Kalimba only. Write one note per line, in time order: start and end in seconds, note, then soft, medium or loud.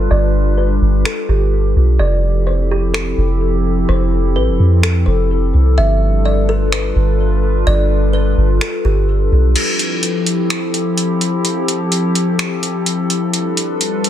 0.11 0.55 D5 loud
0.57 1.02 B4 medium
1.06 1.28 A4 medium
1.29 1.96 G4 medium
1.99 2.44 D5 loud
2.47 2.69 C5 medium
2.71 2.93 G4 medium
2.94 3.38 A4 medium
3.89 4.33 C5 loud
4.36 4.80 B4 medium
4.83 5.06 A4 medium
5.06 5.29 C5 medium
5.78 6.22 E5 loud
6.26 6.48 D5 medium
6.49 6.71 A4 medium
6.73 7.17 B4 medium
7.67 8.11 D5 loud
8.13 8.58 B4 medium
8.62 8.84 A4 medium
8.85 9.52 G4 medium